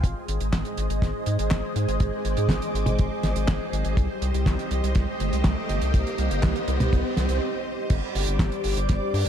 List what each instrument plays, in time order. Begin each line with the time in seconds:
0.04 analog synth bass G#1, string machine G#3 G#4 C5 D#5 D#6, kick, closed hi-hat, riser
0.28 analog synth bass G#1, closed hi-hat
0.40 analog synth bass G#1, closed hi-hat
0.53 analog synth bass G#1, kick, snare, clap, closed hi-hat
0.65 closed hi-hat
0.78 analog synth bass G#1, closed hi-hat
0.90 analog synth bass G#1, closed hi-hat
1.02 analog synth bass G#1, kick, snare, closed hi-hat
1.26 analog synth bass G#2, closed hi-hat
1.39 analog synth bass G#1, closed hi-hat
1.51 analog synth bass G#1, kick, snare, clap, closed hi-hat
1.76 analog synth bass G#2, closed hi-hat
1.88 analog synth bass G#1, closed hi-hat
2.00 analog synth bass G#1, string machine D6, kick, closed hi-hat
2.25 analog synth bass G#1, closed hi-hat
2.37 analog synth bass G#2, closed hi-hat
2.49 analog synth bass G#1, kick, snare, clap, closed hi-hat
2.62 closed hi-hat
2.74 analog synth bass G#1, closed hi-hat
2.86 analog synth bass G#1, closed hi-hat, high tom
2.99 analog synth bass G#1, kick, closed hi-hat
3.23 analog synth bass G#1, snare, closed hi-hat
3.36 analog synth bass G#1, closed hi-hat
3.48 analog synth bass G#1, kick, snare, clap, closed hi-hat
3.73 analog synth bass G#1, closed hi-hat
3.85 analog synth bass G#1, closed hi-hat
3.97 analog synth bass C2, string machine G4 D#5, kick, closed hi-hat
4.22 analog synth bass C2, closed hi-hat
4.34 analog synth bass C2, closed hi-hat
4.46 analog synth bass C2, kick, snare, clap, closed hi-hat
4.59 closed hi-hat
4.71 analog synth bass C2, closed hi-hat
4.83 analog synth bass C2, closed hi-hat
4.95 analog synth bass C2, kick, snare, closed hi-hat
5.20 analog synth bass G1, closed hi-hat
5.33 analog synth bass C2, closed hi-hat
5.44 analog synth bass C2, kick, snare, clap, closed hi-hat
5.69 analog synth bass G1, closed hi-hat
5.82 analog synth bass C2, closed hi-hat
5.94 analog synth bass C2, kick, closed hi-hat
6.07 closed hi-hat
6.18 analog synth bass C2, closed hi-hat
6.31 analog synth bass G1, closed hi-hat
6.43 analog synth bass C2, kick, snare, clap, closed hi-hat
6.56 closed hi-hat
6.68 analog synth bass C2, closed hi-hat
6.80 analog synth bass C2, closed hi-hat, high tom
6.93 analog synth bass C2, kick, closed hi-hat
7.17 analog synth bass C2, snare, closed hi-hat
7.29 analog synth bass C2, closed hi-hat
7.90 analog synth bass G1, string machine G3 G4 C5 D5 D6, kick, closed hi-hat, crash
8.15 analog synth bass G1, open hi-hat
8.27 analog synth bass G1, closed hi-hat
8.39 analog synth bass G1, kick, snare, clap, closed hi-hat
8.52 closed hi-hat
8.64 analog synth bass G1, open hi-hat
8.77 analog synth bass G1, closed hi-hat
8.89 analog synth bass G1, kick, snare, closed hi-hat
9.14 analog synth bass G2, open hi-hat
9.25 closed hi-hat